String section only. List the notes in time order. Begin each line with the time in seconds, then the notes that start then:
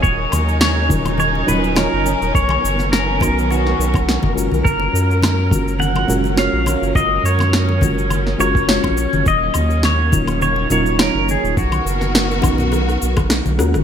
Already playing: F#3
0.03 C#3 C#4 D#4 A#4
2.35 D#3 F#3 B3
4.64 C#4
9.27 D#3 A#3
11.57 D#3 B3 F#4 A#4